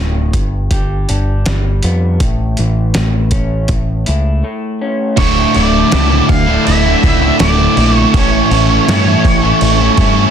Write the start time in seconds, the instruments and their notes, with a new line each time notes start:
Already playing: picked electric bass D1, clean electric guitar D2 A2
0.33 picked electric bass G1, clean electric guitar G2, kick, closed hi-hat
0.71 picked electric bass G1, clean electric guitar G4, kick, closed hi-hat
1.09 picked electric bass G1, clean electric guitar D4, closed hi-hat
1.46 picked electric bass G1, clean electric guitar G3, snare, closed hi-hat
1.83 picked electric bass F2, clean electric guitar B3, closed hi-hat
2.20 picked electric bass A1, clean electric guitar A2, kick, closed hi-hat
2.57 picked electric bass A1, clean electric guitar E3, closed hi-hat
2.94 picked electric bass A1, clean electric guitar A3, snare, closed hi-hat
3.31 clean electric guitar C#4, kick, closed hi-hat
3.68 picked electric bass A1, clean electric guitar A2, kick, closed hi-hat
4.06 picked electric bass C#2, clean electric guitar E4, closed hi-hat
4.44 clean electric guitar A3
4.81 clean electric guitar C#4
5.17 picked electric bass D1, distorted electric guitar D2 A2 D3 A3, lead electric guitar C#5, kick, crash
5.22 distorted electric guitar E4
5.54 picked electric bass D1, distorted electric guitar A2 D3 A3 E4, lead electric guitar D5, crash
5.91 picked electric bass C#2, distorted electric guitar D2 A2 D3 A3 E4, snare, crash
6.10 distorted electric guitar D3 A3 E4
6.28 picked electric bass D1, lead electric guitar F5, muted overdriven electric guitar stroke, muted distorted electric guitar stroke, kick, crash
6.46 distorted electric guitar D3 A3 E4
6.66 picked electric bass D1, lead electric guitar E5, crash
6.85 distorted electric guitar D3 A3 E4
7.03 picked electric bass C#2, distorted electric guitar A2 D3 A3 E4, kick, crash
7.21 distorted electric guitar D3 A3 E4
7.39 picked electric bass D1, distorted electric guitar D2 A2 D3 A3, lead electric guitar D5, snare, crash
7.44 distorted electric guitar E4
7.59 distorted electric guitar D3 A3 E4
7.77 picked electric bass A#1, distorted electric guitar A2 D3 A3 E4, crash
7.93 overdriven electric guitar E4, lead electric guitar C#5
7.98 overdriven electric guitar D3 A3
8.14 picked electric bass A1, distorted electric guitar A2 E3 A3 C#4 E4, lead electric guitar C#5, kick, crash
8.18 distorted electric guitar A4
8.51 picked electric bass A1, distorted electric guitar A3 C#4 E4 A4, crash
8.87 picked electric bass G2, distorted electric guitar A2 E3 A3 C#4 E4 A4, snare, crash
9.05 distorted electric guitar A3 C#4 E4 A4
9.24 picked electric bass A1, muted distorted electric guitar stroke, muted overdriven electric guitar stroke, kick, crash
9.42 distorted electric guitar A3 C#4 E4 A4
9.61 picked electric bass A1, crash
9.79 distorted electric guitar A3 C#4 E4 A4
9.96 picked electric bass G2, distorted electric guitar A3 C#4 E4 A4, kick, crash
10.16 distorted electric guitar A3 C#4 E4 A4